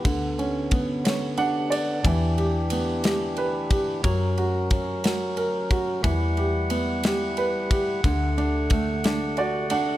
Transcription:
<<
  \new Staff \with { instrumentName = "Grand piano" } { \time 6/8 \key e \dorian \tempo 4. = 60 << { r2 fis''8 d''8 | r2. | r2. | r2. |
r2 d''8 fis''8 | } \\ { d8 cis'8 b8 cis''8 d'4 | e8 g'8 b8 g'8 b'8 g'8 | fis8 fis'8 cis'8 fis'8 ais'8 fis'8 | e8 g'8 b8 g'8 b'8 g'8 |
d8 d'8 a8 d'8 fis'8 d'8 | } >> }
  \new Staff \with { instrumentName = "Tonewheel organ" } { \time 6/8 \key e \dorian r2. | g'2. | ais'2. | fis''2.~ |
fis''2. | }
  \new Staff \with { instrumentName = "Tonewheel organ" } { \clef bass \time 6/8 \key e \dorian <d b>2. | <e d'>2. | <fis cis'>2. | <g e'>2. |
<d a>2. | }
  \new Staff \with { instrumentName = "Fingered electric bass" } { \clef bass \time 6/8 \key e \dorian d,2. | e,2. | fis,2. | e,2. |
d,2. | }
  \new DrumStaff \with { instrumentName = "Drums" } \drummode { \time 6/8 <bd cymr>8 cymr8 <bd cymr>8 <cymr sn>8 cymr8 cymr8 | <bd cymr>8 cymr8 cymr8 <cymr sn>8 cymr8 <bd cymr>8 | <bd cymr>8 cymr8 <bd cymr>8 <cymr sn>8 cymr8 <bd cymr>8 | <bd cymr>8 cymr8 cymr8 <cymr sn>8 cymr8 <bd cymr>8 |
<bd cymr>8 cymr8 <bd cymr>8 <cymr sn>8 cymr8 cymr8 | }
>>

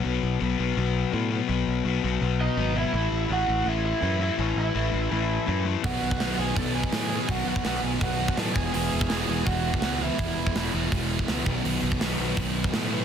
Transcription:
<<
  \new Staff \with { instrumentName = "Lead electric guitar" } { \time 4/4 \key b \mixolydian \tempo 4 = 166 r1 | r2 r8 <dis' dis''>4 <e' e''>8~ | <e' e''>4 <fis' fis''>4 <e' e''>8 <e' e''>4 <e' e''>8 | <cis' cis''>8 <e' e''>2. r8 |
<fis' fis''>4. <gis' gis''>8 <a' a''>8 <gis' gis''>4. | <fis' fis''>8 <fis' fis''>8 <fis' fis''>8 <gis' gis''>8 <fis' fis''>4 <a' a''>8 <gis' gis''>8 | <gis' gis''>2 <fis' fis''>4. <e' e''>8~ | <e' e''>4. r2 r8 |
r1 | }
  \new Staff \with { instrumentName = "Distorted electric guitar" } { \clef bass \time 4/4 \key b \mixolydian r1 | r1 | r1 | r1 |
<b, dis fis b dis'>4 <b, dis fis b dis'>8 <b, dis fis b dis'>8 <b, dis fis b dis'>4 <b, dis fis b dis'>8 <b, dis fis b dis'>8 | <b, dis fis b dis'>4 <b, dis fis b dis'>8 <b, dis fis b dis'>8 <b, dis fis b dis'>4 <b, dis fis b dis'>8 <e gis b e'>8 | <e gis b e'>4 <e gis b e'>8 <e gis b e'>8 <e gis b e'>4 <e gis b e'>8 <e gis b e'>8 | <e gis b e'>4 <e gis b e'>8 <e gis b e'>8 <e gis b e'>4 <e gis b e'>8 <b, dis fis b dis'>8 |
<b, dis fis b dis'>4 <b, dis fis b dis'>8 <b, dis fis b dis'>8 <b, dis fis b dis'>4 <b, dis fis b dis'>8 <b, dis fis b dis'>8 | }
  \new Staff \with { instrumentName = "Overdriven electric guitar" } { \clef bass \time 4/4 \key b \mixolydian <b, fis b>4 <b, fis b>8 <b, fis b>8 <b, fis b>4 <b, fis b>8 <b, fis b>8 | <b, fis b>4 <b, fis b>8 <b, fis b>8 <b, fis b>4 <b, fis b>8 <b, fis b>8 | <a, e a>4 <a, e a>8 <a, e a>8 <a, e a>4 <a, e a>8 <a, e a>8 | <a, e a>4 <a, e a>8 <a, e a>8 <a, e a>4 <a, e a>8 <a, e a>8 |
<b, fis b>4 <b, fis b>8 <b, fis b>8 <b, fis b>4 <b, fis b>8 <b, fis b>8 | <b, fis b>4 <b, fis b>8 <b, fis b>8 <b, fis b>4 <b, fis b>8 <e, b, e>8 | <e, b, e>4 <e, b, e>8 <e, b, e>8 <e, b, e>4 <e, b, e>8 <e, b, e>8 | <e, b, e>4 <e, b, e>8 <e, b, e>8 <e, b, e>4 <e, b, e>8 <b, fis b>8 |
<b, fis b>4 <b, fis b>8 <b, fis b>8 <b, fis b>4 <b, fis b>8 <b, fis b>8 | }
  \new Staff \with { instrumentName = "Picked electric bass" } { \clef bass \time 4/4 \key b \mixolydian b,,8 b,,8 b,,8 b,,8 b,,4 a,4 | b,,8 b,,8 b,,8 b,,8 b,,4 gis,,4 | a,,8 a,,8 a,,8 a,,8 a,,4 fis,4 | a,,8 a,,8 a,,8 a,,8 a,,4 fis,4 |
b,,8 b,,8 b,,8 b,,8 b,,4 a,4 | b,,8 b,,8 b,,8 b,,8 b,,4 a,8 e,,8 | e,,8 e,,8 e,,8 e,,8 e,,4 cis,4 | e,,8 e,,8 e,,8 e,,8 e,,4 cis,8 b,,8 |
b,,8 b,,8 b,,8 b,,8 b,,4 a,4 | }
  \new DrumStaff \with { instrumentName = "Drums" } \drummode { \time 4/4 r4 r4 r4 r4 | r4 r4 r4 r4 | r4 r4 r4 r4 | r4 r4 r4 r4 |
<hho bd>8. bd16 <hho sn>4 <hho bd>8. bd16 <hho sn>4 | <hho bd>8. bd16 <hho sn>4 <hho bd>8. bd16 <hho sn>8 bd8 | hho8. bd16 <hho sn>4 bd8. bd16 <hho sn>4 | <hho bd>8. bd16 <hho sn>4 <hho bd>8. bd16 <hho sn>8 bd8 |
hho8. bd16 <hho sn>4 bd8. bd16 <hho sn>4 | }
>>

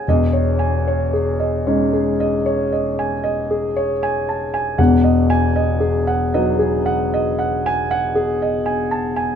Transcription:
<<
  \new Staff \with { instrumentName = "Grand piano" } { \time 9/8 \key e \major \tempo 4. = 38 dis''16 cis''16 gis''16 cis''16 gis'16 dis''16 cis''16 gis'16 dis''16 cis''16 dis''16 gis''16 dis''16 gis'16 cis''16 gis''16 a''16 gis''16 | fis''16 dis''16 gis''16 dis''16 gis'16 fis''16 dis''16 gis'16 fis''16 dis''16 fis''16 gis''16 fis''16 gis'16 dis''16 gis''16 a''16 gis''16 | }
  \new Staff \with { instrumentName = "Grand piano" } { \clef bass \time 9/8 \key e \major <e,, e,>4. <gis cis' dis'>2. | <e,, e,>4. <fis b dis'>2. | }
>>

